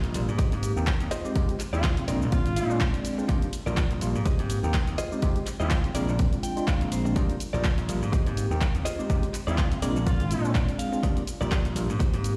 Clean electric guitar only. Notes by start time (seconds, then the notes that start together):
0.15 muted clean electric guitar stroke
0.38 G4 G#4 C5 D#5
0.63 muted clean electric guitar stroke
1.11 F4 G#4 C5 D#5
1.73 F4 G#4 C5 D5
2.08 F4 G#4 A#4 D5
2.56 F5, muted clean electric guitar stroke
2.81 D5
3.05 muted clean electric guitar stroke
3.18 muted clean electric guitar stroke
3.28 D#4 G4 A#4 D5
3.66 D#4 G4 A#4 D5
4.01 muted clean electric guitar stroke
4.25 G4 G#4 C5 D#5
4.50 muted clean electric guitar stroke
4.98 F4 G#4 C5 D#5
5.60 F4 G#4 C5 D#5
5.95 F4 G#4 A#4 D5
6.43 G5, muted clean electric guitar stroke
6.68 F5
6.92 C5, muted clean electric guitar stroke
7.05 muted clean electric guitar stroke
7.16 D#4 G4 A#4 D5
7.53 D#4 G4 A#4 D5
7.89 muted clean electric guitar stroke
8.12 G4 G#4 C5 D#5
8.37 muted clean electric guitar stroke
8.85 F4 G#4 C5 D#5
9.47 F4 G#4 C5 D5
9.82 F4 G#4 A#4 D5
10.31 muted clean electric guitar stroke
10.55 D5
10.79 F5, muted clean electric guitar stroke
10.92 muted clean electric guitar stroke
11.03 D#4 G4 A#4 D5
11.41 D#4 G4 A#4 D5
11.76 muted clean electric guitar stroke
12.00 D#4 G4 G#4 C5
12.24 muted clean electric guitar stroke